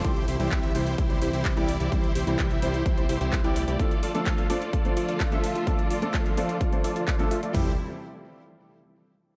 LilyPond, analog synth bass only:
\new Staff \with { instrumentName = "Analog synth bass" } { \clef bass \time 4/4 \key c \major \tempo 4 = 128 c,8 c,16 c,16 c,8 c,8 c,8 c,16 c,8 c,8 c,16 | c,8 c,16 c,16 c,8 c,8 c,8 c,16 c,8 c,8 c,16 | r1 | r1 |
c,8 r2. r8 | }